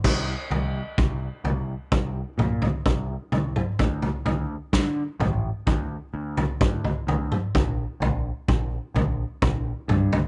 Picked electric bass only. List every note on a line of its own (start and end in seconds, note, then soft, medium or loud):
0.04 0.33 C2 medium
0.51 0.80 C2 medium
0.98 1.27 C2 medium
1.44 1.74 C2 medium
1.92 2.21 C2 medium
2.38 2.67 A#2 medium
2.86 3.15 C2 medium
3.32 3.61 C2 medium
3.80 4.09 D2 medium
4.26 4.55 D2 medium
4.73 5.02 D3 medium
5.20 5.49 A1 medium
5.67 5.96 D2 medium
6.14 6.43 D2 medium
6.61 6.90 D2 medium
7.07 7.36 D2 medium
7.55 7.84 A#1 medium
8.00 8.30 A#1 medium
8.48 8.77 A#1 medium
8.94 9.24 A#1 medium
9.42 9.71 A#1 medium
9.88 10.17 G2 medium